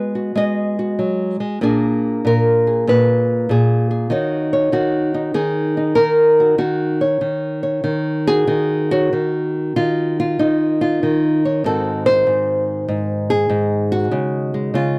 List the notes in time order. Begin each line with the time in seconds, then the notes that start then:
Already playing: G#3 B3 F#4 B4
0.15 F#4
0.35 G#3 D#5
0.79 F#4
0.99 F#3
1.40 G#3
1.61 A#2 A#3 D4 G#4
2.25 A#2 A#4
2.67 G#4
2.87 A#2 B4
3.49 A#2 G#4
3.91 G#4
4.10 D#3 D#4 F#4 C#5
4.53 C#5
4.72 D#3 F#4
5.14 D#4
5.34 D#3 G#4
5.77 D#4
5.95 D#3 A#4
6.40 F#4
6.58 D#3 F#4
7.01 C#5
7.21 D#3
7.63 C#5
7.84 D#3
8.27 F#4 G#4
8.47 D#3
8.91 F#4 C#5
9.13 D#3
9.76 D#3 F4
10.20 F4
10.39 D#3 D#4
10.81 F4
11.03 D#3
11.45 C#5
11.64 G#2 D#3 C4 F#4 A4
12.06 C5
12.27 G#2
12.88 G#2
13.30 G#4
13.49 G#2
13.92 F#4
14.11 C#3 G#3
14.54 G#3
14.74 C#3 F4